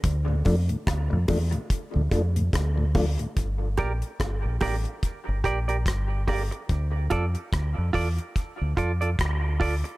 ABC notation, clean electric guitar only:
X:1
M:4/4
L:1/16
Q:"Swing 16ths" 1/4=72
K:Gdor
V:1 name="Clean electric guitar"
z16 | z2 [GBd] z3 [GBd] z3 [GBd] [GBd] z2 [GBd] z | z2 [FAd] z3 [FAd] z3 [FAd] [FAd] z2 [FAd] z |]